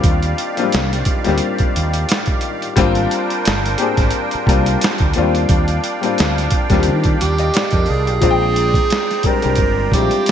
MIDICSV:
0, 0, Header, 1, 7, 480
1, 0, Start_track
1, 0, Key_signature, -3, "major"
1, 0, Tempo, 681818
1, 27, Time_signature, 4, 2, 24, 8
1, 7263, End_track
2, 0, Start_track
2, 0, Title_t, "Accordion"
2, 0, Program_c, 0, 21
2, 0, Note_on_c, 0, 51, 76
2, 0, Note_on_c, 0, 67, 69
2, 0, Note_on_c, 0, 74, 72
2, 0, Note_on_c, 0, 77, 86
2, 1926, Note_off_c, 0, 51, 0
2, 1926, Note_off_c, 0, 74, 0
2, 1926, Note_off_c, 0, 77, 0
2, 1927, Note_off_c, 0, 67, 0
2, 1944, Note_on_c, 0, 70, 74
2, 1945, Note_on_c, 0, 72, 77
2, 1945, Note_on_c, 0, 79, 89
2, 1947, Note_on_c, 0, 62, 82
2, 3609, Note_off_c, 0, 70, 0
2, 3609, Note_off_c, 0, 72, 0
2, 3609, Note_off_c, 0, 79, 0
2, 3610, Note_off_c, 0, 62, 0
2, 3626, Note_on_c, 0, 62, 77
2, 3627, Note_on_c, 0, 74, 67
2, 3629, Note_on_c, 0, 77, 84
2, 3629, Note_on_c, 0, 79, 72
2, 5765, Note_off_c, 0, 62, 0
2, 5765, Note_off_c, 0, 74, 0
2, 5766, Note_off_c, 0, 77, 0
2, 5766, Note_off_c, 0, 79, 0
2, 5788, Note_on_c, 0, 82, 84
2, 5789, Note_on_c, 0, 72, 67
2, 5789, Note_on_c, 0, 74, 68
2, 5791, Note_on_c, 0, 79, 78
2, 7263, Note_off_c, 0, 72, 0
2, 7263, Note_off_c, 0, 74, 0
2, 7263, Note_off_c, 0, 79, 0
2, 7263, Note_off_c, 0, 82, 0
2, 7263, End_track
3, 0, Start_track
3, 0, Title_t, "Tenor saxophone"
3, 0, Program_c, 1, 66
3, 5079, Note_on_c, 1, 67, 90
3, 5560, Note_on_c, 1, 68, 106
3, 5571, Note_off_c, 1, 67, 0
3, 6519, Note_on_c, 1, 70, 106
3, 6530, Note_off_c, 1, 68, 0
3, 6991, Note_off_c, 1, 70, 0
3, 6996, Note_on_c, 1, 67, 95
3, 7263, Note_off_c, 1, 67, 0
3, 7263, End_track
4, 0, Start_track
4, 0, Title_t, "Upright piano"
4, 0, Program_c, 2, 0
4, 0, Control_c, 2, 64, 127
4, 0, Note_on_c, 2, 55, 78
4, 0, Note_on_c, 2, 58, 74
4, 0, Note_on_c, 2, 60, 73
4, 0, Note_on_c, 2, 62, 74
4, 0, Note_on_c, 2, 65, 86
4, 290, Note_off_c, 2, 55, 0
4, 293, Note_off_c, 2, 58, 0
4, 296, Note_off_c, 2, 60, 0
4, 299, Note_off_c, 2, 62, 0
4, 301, Note_off_c, 2, 65, 0
4, 393, Note_on_c, 2, 53, 57
4, 401, Note_on_c, 2, 58, 66
4, 406, Note_on_c, 2, 60, 67
4, 412, Note_on_c, 2, 62, 67
4, 418, Note_on_c, 2, 65, 86
4, 437, Note_off_c, 2, 53, 0
4, 440, Note_on_c, 2, 55, 75
4, 795, Note_off_c, 2, 58, 0
4, 797, Note_off_c, 2, 60, 0
4, 800, Note_off_c, 2, 62, 0
4, 803, Note_off_c, 2, 65, 0
4, 814, Note_off_c, 2, 55, 0
4, 875, Note_on_c, 2, 55, 81
4, 881, Note_on_c, 2, 58, 71
4, 887, Note_on_c, 2, 60, 74
4, 893, Note_on_c, 2, 62, 75
4, 900, Note_on_c, 2, 67, 95
4, 1673, Note_off_c, 2, 55, 0
4, 1676, Note_off_c, 2, 58, 0
4, 1679, Note_off_c, 2, 60, 0
4, 1682, Note_off_c, 2, 62, 0
4, 1686, Note_off_c, 2, 67, 0
4, 1941, Note_on_c, 2, 55, 102
4, 1947, Note_on_c, 2, 58, 94
4, 1954, Note_on_c, 2, 60, 104
4, 1957, Control_c, 2, 64, 0
4, 1959, Note_on_c, 2, 62, 97
4, 1965, Note_on_c, 2, 65, 125
4, 2078, Control_c, 2, 64, 127
4, 2561, Note_off_c, 2, 55, 0
4, 2563, Note_off_c, 2, 58, 0
4, 2567, Note_off_c, 2, 60, 0
4, 2569, Note_off_c, 2, 62, 0
4, 2572, Note_off_c, 2, 65, 0
4, 2661, Note_on_c, 2, 67, 82
4, 2667, Note_on_c, 2, 58, 77
4, 2673, Note_on_c, 2, 60, 72
4, 2679, Note_on_c, 2, 62, 76
4, 2686, Note_on_c, 2, 68, 89
4, 3075, Note_off_c, 2, 67, 0
4, 3078, Note_off_c, 2, 58, 0
4, 3081, Note_off_c, 2, 60, 0
4, 3084, Note_off_c, 2, 62, 0
4, 3088, Note_off_c, 2, 68, 0
4, 3140, Note_on_c, 2, 55, 82
4, 3147, Note_on_c, 2, 58, 78
4, 3154, Note_on_c, 2, 60, 75
4, 3160, Note_on_c, 2, 62, 75
4, 3164, Note_on_c, 2, 65, 91
4, 3616, Note_off_c, 2, 58, 0
4, 3621, Note_on_c, 2, 53, 65
4, 3623, Note_off_c, 2, 55, 0
4, 3623, Note_off_c, 2, 60, 0
4, 3627, Note_on_c, 2, 58, 73
4, 3629, Note_off_c, 2, 62, 0
4, 3634, Note_on_c, 2, 60, 77
4, 3635, Note_off_c, 2, 65, 0
4, 3637, Control_c, 2, 64, 0
4, 3640, Note_on_c, 2, 62, 75
4, 3646, Note_on_c, 2, 65, 90
4, 3669, Note_on_c, 2, 55, 78
4, 3675, Note_off_c, 2, 53, 0
4, 3772, Control_c, 2, 64, 127
4, 4133, Note_off_c, 2, 58, 0
4, 4136, Note_off_c, 2, 60, 0
4, 4139, Note_off_c, 2, 62, 0
4, 4142, Note_off_c, 2, 65, 0
4, 4154, Note_off_c, 2, 55, 0
4, 4231, Note_on_c, 2, 55, 73
4, 4238, Note_on_c, 2, 58, 66
4, 4245, Note_on_c, 2, 60, 68
4, 4251, Note_on_c, 2, 62, 66
4, 4257, Note_on_c, 2, 65, 79
4, 4630, Note_off_c, 2, 55, 0
4, 4633, Note_off_c, 2, 58, 0
4, 4637, Note_off_c, 2, 60, 0
4, 4640, Note_off_c, 2, 62, 0
4, 4643, Note_off_c, 2, 65, 0
4, 4713, Note_on_c, 2, 55, 77
4, 4719, Note_on_c, 2, 58, 75
4, 4725, Note_on_c, 2, 60, 70
4, 4731, Note_on_c, 2, 62, 73
4, 4737, Note_on_c, 2, 65, 66
4, 4769, Note_off_c, 2, 65, 0
4, 4785, Note_on_c, 2, 67, 86
4, 5099, Note_off_c, 2, 67, 0
4, 5206, Note_on_c, 2, 75, 63
4, 5304, Note_off_c, 2, 75, 0
4, 5314, Note_on_c, 2, 74, 66
4, 5437, Note_off_c, 2, 74, 0
4, 5447, Note_on_c, 2, 70, 67
4, 5513, Note_off_c, 2, 55, 0
4, 5515, Note_off_c, 2, 58, 0
4, 5519, Note_off_c, 2, 60, 0
4, 5522, Note_off_c, 2, 62, 0
4, 5672, Note_off_c, 2, 70, 0
4, 5685, Note_on_c, 2, 67, 60
4, 5777, Note_on_c, 2, 53, 90
4, 5783, Note_on_c, 2, 56, 81
4, 5790, Note_on_c, 2, 60, 78
4, 5795, Note_on_c, 2, 62, 80
4, 5797, Control_c, 2, 64, 0
4, 5802, Note_on_c, 2, 65, 80
4, 5845, Note_off_c, 2, 65, 0
4, 5848, Note_on_c, 2, 79, 98
4, 5910, Note_off_c, 2, 67, 0
4, 5922, Control_c, 2, 64, 127
4, 6399, Note_off_c, 2, 53, 0
4, 6402, Note_off_c, 2, 56, 0
4, 6405, Note_off_c, 2, 60, 0
4, 6408, Note_off_c, 2, 62, 0
4, 6434, Note_off_c, 2, 79, 0
4, 6499, Note_on_c, 2, 55, 66
4, 6505, Note_on_c, 2, 56, 63
4, 6513, Note_on_c, 2, 60, 61
4, 6519, Note_on_c, 2, 62, 65
4, 6525, Note_on_c, 2, 67, 74
4, 6615, Note_off_c, 2, 55, 0
4, 6617, Note_off_c, 2, 56, 0
4, 6622, Note_off_c, 2, 60, 0
4, 6625, Note_off_c, 2, 62, 0
4, 6628, Note_off_c, 2, 67, 0
4, 6633, Note_on_c, 2, 55, 72
4, 6640, Note_on_c, 2, 56, 64
4, 6647, Note_on_c, 2, 60, 60
4, 6651, Note_on_c, 2, 62, 63
4, 6659, Note_on_c, 2, 67, 79
4, 6932, Note_off_c, 2, 55, 0
4, 6935, Note_off_c, 2, 56, 0
4, 6939, Note_off_c, 2, 60, 0
4, 6941, Note_off_c, 2, 62, 0
4, 6945, Note_off_c, 2, 67, 0
4, 6981, Note_on_c, 2, 55, 65
4, 6987, Note_on_c, 2, 56, 58
4, 6993, Note_on_c, 2, 60, 61
4, 6999, Note_on_c, 2, 62, 58
4, 7004, Note_on_c, 2, 64, 59
4, 7046, Note_off_c, 2, 64, 0
4, 7050, Note_on_c, 2, 65, 68
4, 7263, Note_off_c, 2, 55, 0
4, 7263, Note_off_c, 2, 56, 0
4, 7263, Note_off_c, 2, 60, 0
4, 7263, Note_off_c, 2, 62, 0
4, 7263, Note_off_c, 2, 65, 0
4, 7263, End_track
5, 0, Start_track
5, 0, Title_t, "Fretless electric bass"
5, 0, Program_c, 3, 35
5, 37, Note_on_c, 3, 39, 110
5, 231, Note_off_c, 3, 39, 0
5, 526, Note_on_c, 3, 36, 84
5, 716, Note_off_c, 3, 36, 0
5, 901, Note_on_c, 3, 38, 80
5, 980, Note_off_c, 3, 38, 0
5, 1246, Note_on_c, 3, 39, 85
5, 1436, Note_off_c, 3, 39, 0
5, 1958, Note_on_c, 3, 32, 110
5, 2152, Note_off_c, 3, 32, 0
5, 2447, Note_on_c, 3, 31, 88
5, 2637, Note_off_c, 3, 31, 0
5, 2809, Note_on_c, 3, 32, 74
5, 2894, Note_off_c, 3, 32, 0
5, 3155, Note_on_c, 3, 36, 87
5, 3350, Note_off_c, 3, 36, 0
5, 3531, Note_on_c, 3, 38, 87
5, 3615, Note_off_c, 3, 38, 0
5, 3645, Note_on_c, 3, 39, 96
5, 3836, Note_off_c, 3, 39, 0
5, 3876, Note_on_c, 3, 39, 106
5, 4071, Note_off_c, 3, 39, 0
5, 4367, Note_on_c, 3, 38, 82
5, 4557, Note_off_c, 3, 38, 0
5, 4727, Note_on_c, 3, 39, 82
5, 4844, Note_on_c, 3, 51, 97
5, 4854, Note_off_c, 3, 39, 0
5, 5035, Note_off_c, 3, 51, 0
5, 5083, Note_on_c, 3, 39, 82
5, 5275, Note_off_c, 3, 39, 0
5, 5449, Note_on_c, 3, 41, 70
5, 5534, Note_off_c, 3, 41, 0
5, 5563, Note_on_c, 3, 36, 89
5, 5696, Note_off_c, 3, 36, 0
5, 5696, Note_on_c, 3, 35, 81
5, 5777, Note_off_c, 3, 35, 0
5, 5794, Note_on_c, 3, 34, 110
5, 6188, Note_off_c, 3, 34, 0
5, 6656, Note_on_c, 3, 36, 78
5, 6737, Note_off_c, 3, 36, 0
5, 6755, Note_on_c, 3, 31, 84
5, 6950, Note_off_c, 3, 31, 0
5, 6990, Note_on_c, 3, 34, 82
5, 7099, Note_off_c, 3, 34, 0
5, 7263, End_track
6, 0, Start_track
6, 0, Title_t, "Muted fretless electric bass strokes"
6, 1135, Note_on_c, 9, 29, 44
6, 1205, Note_off_c, 9, 29, 0
6, 3061, Note_on_c, 9, 29, 43
6, 3132, Note_off_c, 9, 29, 0
6, 6515, Note_on_c, 9, 29, 42
6, 6585, Note_off_c, 9, 29, 0
6, 7263, End_track
7, 0, Start_track
7, 0, Title_t, "Drums"
7, 25, Note_on_c, 9, 42, 85
7, 27, Note_on_c, 9, 36, 111
7, 96, Note_off_c, 9, 42, 0
7, 98, Note_off_c, 9, 36, 0
7, 159, Note_on_c, 9, 42, 50
7, 229, Note_off_c, 9, 42, 0
7, 269, Note_on_c, 9, 42, 70
7, 340, Note_off_c, 9, 42, 0
7, 403, Note_on_c, 9, 42, 45
7, 473, Note_off_c, 9, 42, 0
7, 510, Note_on_c, 9, 42, 83
7, 525, Note_on_c, 9, 38, 104
7, 580, Note_off_c, 9, 42, 0
7, 595, Note_off_c, 9, 38, 0
7, 654, Note_on_c, 9, 42, 50
7, 657, Note_on_c, 9, 38, 35
7, 724, Note_off_c, 9, 42, 0
7, 728, Note_off_c, 9, 38, 0
7, 741, Note_on_c, 9, 42, 75
7, 748, Note_on_c, 9, 36, 91
7, 811, Note_off_c, 9, 42, 0
7, 818, Note_off_c, 9, 36, 0
7, 876, Note_on_c, 9, 42, 49
7, 895, Note_on_c, 9, 38, 31
7, 947, Note_off_c, 9, 42, 0
7, 966, Note_off_c, 9, 38, 0
7, 969, Note_on_c, 9, 42, 69
7, 1039, Note_off_c, 9, 42, 0
7, 1116, Note_on_c, 9, 42, 46
7, 1126, Note_on_c, 9, 36, 81
7, 1186, Note_off_c, 9, 42, 0
7, 1197, Note_off_c, 9, 36, 0
7, 1239, Note_on_c, 9, 42, 72
7, 1310, Note_off_c, 9, 42, 0
7, 1362, Note_on_c, 9, 42, 53
7, 1433, Note_off_c, 9, 42, 0
7, 1469, Note_on_c, 9, 42, 89
7, 1490, Note_on_c, 9, 38, 114
7, 1540, Note_off_c, 9, 42, 0
7, 1560, Note_off_c, 9, 38, 0
7, 1589, Note_on_c, 9, 42, 43
7, 1602, Note_on_c, 9, 36, 90
7, 1659, Note_off_c, 9, 42, 0
7, 1672, Note_off_c, 9, 36, 0
7, 1696, Note_on_c, 9, 42, 50
7, 1767, Note_off_c, 9, 42, 0
7, 1846, Note_on_c, 9, 42, 40
7, 1916, Note_off_c, 9, 42, 0
7, 1947, Note_on_c, 9, 42, 82
7, 1948, Note_on_c, 9, 36, 107
7, 2017, Note_off_c, 9, 42, 0
7, 2019, Note_off_c, 9, 36, 0
7, 2078, Note_on_c, 9, 42, 47
7, 2148, Note_off_c, 9, 42, 0
7, 2191, Note_on_c, 9, 42, 70
7, 2261, Note_off_c, 9, 42, 0
7, 2326, Note_on_c, 9, 42, 48
7, 2396, Note_off_c, 9, 42, 0
7, 2431, Note_on_c, 9, 42, 84
7, 2447, Note_on_c, 9, 38, 103
7, 2502, Note_off_c, 9, 42, 0
7, 2517, Note_off_c, 9, 38, 0
7, 2573, Note_on_c, 9, 42, 53
7, 2577, Note_on_c, 9, 38, 33
7, 2644, Note_off_c, 9, 42, 0
7, 2647, Note_off_c, 9, 38, 0
7, 2661, Note_on_c, 9, 42, 69
7, 2731, Note_off_c, 9, 42, 0
7, 2797, Note_on_c, 9, 42, 48
7, 2800, Note_on_c, 9, 36, 83
7, 2816, Note_on_c, 9, 38, 32
7, 2867, Note_off_c, 9, 42, 0
7, 2870, Note_off_c, 9, 36, 0
7, 2887, Note_off_c, 9, 38, 0
7, 2890, Note_on_c, 9, 42, 66
7, 2961, Note_off_c, 9, 42, 0
7, 3036, Note_on_c, 9, 42, 43
7, 3106, Note_off_c, 9, 42, 0
7, 3146, Note_on_c, 9, 36, 92
7, 3160, Note_on_c, 9, 42, 71
7, 3216, Note_off_c, 9, 36, 0
7, 3231, Note_off_c, 9, 42, 0
7, 3283, Note_on_c, 9, 42, 52
7, 3353, Note_off_c, 9, 42, 0
7, 3389, Note_on_c, 9, 42, 85
7, 3410, Note_on_c, 9, 38, 117
7, 3460, Note_off_c, 9, 42, 0
7, 3480, Note_off_c, 9, 38, 0
7, 3508, Note_on_c, 9, 42, 40
7, 3522, Note_on_c, 9, 36, 87
7, 3578, Note_off_c, 9, 42, 0
7, 3592, Note_off_c, 9, 36, 0
7, 3615, Note_on_c, 9, 42, 56
7, 3686, Note_off_c, 9, 42, 0
7, 3764, Note_on_c, 9, 42, 42
7, 3835, Note_off_c, 9, 42, 0
7, 3864, Note_on_c, 9, 42, 85
7, 3867, Note_on_c, 9, 36, 108
7, 3934, Note_off_c, 9, 42, 0
7, 3938, Note_off_c, 9, 36, 0
7, 3997, Note_on_c, 9, 42, 50
7, 4068, Note_off_c, 9, 42, 0
7, 4109, Note_on_c, 9, 42, 72
7, 4179, Note_off_c, 9, 42, 0
7, 4245, Note_on_c, 9, 42, 47
7, 4315, Note_off_c, 9, 42, 0
7, 4351, Note_on_c, 9, 42, 85
7, 4367, Note_on_c, 9, 38, 103
7, 4422, Note_off_c, 9, 42, 0
7, 4437, Note_off_c, 9, 38, 0
7, 4493, Note_on_c, 9, 42, 50
7, 4497, Note_on_c, 9, 38, 37
7, 4563, Note_off_c, 9, 42, 0
7, 4567, Note_off_c, 9, 38, 0
7, 4580, Note_on_c, 9, 42, 73
7, 4588, Note_on_c, 9, 36, 94
7, 4650, Note_off_c, 9, 42, 0
7, 4658, Note_off_c, 9, 36, 0
7, 4715, Note_on_c, 9, 42, 48
7, 4718, Note_on_c, 9, 36, 78
7, 4734, Note_on_c, 9, 38, 33
7, 4785, Note_off_c, 9, 42, 0
7, 4788, Note_off_c, 9, 36, 0
7, 4804, Note_off_c, 9, 38, 0
7, 4807, Note_on_c, 9, 42, 68
7, 4878, Note_off_c, 9, 42, 0
7, 4953, Note_on_c, 9, 42, 42
7, 4965, Note_on_c, 9, 36, 79
7, 5023, Note_off_c, 9, 42, 0
7, 5036, Note_off_c, 9, 36, 0
7, 5075, Note_on_c, 9, 42, 72
7, 5146, Note_off_c, 9, 42, 0
7, 5199, Note_on_c, 9, 42, 51
7, 5269, Note_off_c, 9, 42, 0
7, 5306, Note_on_c, 9, 42, 85
7, 5327, Note_on_c, 9, 38, 114
7, 5377, Note_off_c, 9, 42, 0
7, 5397, Note_off_c, 9, 38, 0
7, 5425, Note_on_c, 9, 42, 42
7, 5440, Note_on_c, 9, 36, 90
7, 5496, Note_off_c, 9, 42, 0
7, 5510, Note_off_c, 9, 36, 0
7, 5532, Note_on_c, 9, 46, 37
7, 5602, Note_off_c, 9, 46, 0
7, 5683, Note_on_c, 9, 42, 44
7, 5754, Note_off_c, 9, 42, 0
7, 5784, Note_on_c, 9, 42, 83
7, 5786, Note_on_c, 9, 36, 100
7, 5854, Note_off_c, 9, 42, 0
7, 5856, Note_off_c, 9, 36, 0
7, 6027, Note_on_c, 9, 42, 63
7, 6098, Note_off_c, 9, 42, 0
7, 6153, Note_on_c, 9, 36, 90
7, 6162, Note_on_c, 9, 42, 45
7, 6224, Note_off_c, 9, 36, 0
7, 6232, Note_off_c, 9, 42, 0
7, 6268, Note_on_c, 9, 42, 77
7, 6283, Note_on_c, 9, 38, 100
7, 6338, Note_off_c, 9, 42, 0
7, 6354, Note_off_c, 9, 38, 0
7, 6411, Note_on_c, 9, 42, 32
7, 6415, Note_on_c, 9, 38, 34
7, 6482, Note_off_c, 9, 42, 0
7, 6485, Note_off_c, 9, 38, 0
7, 6498, Note_on_c, 9, 42, 70
7, 6506, Note_on_c, 9, 36, 88
7, 6569, Note_off_c, 9, 42, 0
7, 6576, Note_off_c, 9, 36, 0
7, 6634, Note_on_c, 9, 42, 45
7, 6704, Note_off_c, 9, 42, 0
7, 6727, Note_on_c, 9, 42, 65
7, 6746, Note_on_c, 9, 36, 88
7, 6797, Note_off_c, 9, 42, 0
7, 6816, Note_off_c, 9, 36, 0
7, 6982, Note_on_c, 9, 36, 87
7, 6994, Note_on_c, 9, 42, 67
7, 7052, Note_off_c, 9, 36, 0
7, 7065, Note_off_c, 9, 42, 0
7, 7117, Note_on_c, 9, 42, 48
7, 7187, Note_off_c, 9, 42, 0
7, 7225, Note_on_c, 9, 42, 85
7, 7263, Note_off_c, 9, 42, 0
7, 7263, End_track
0, 0, End_of_file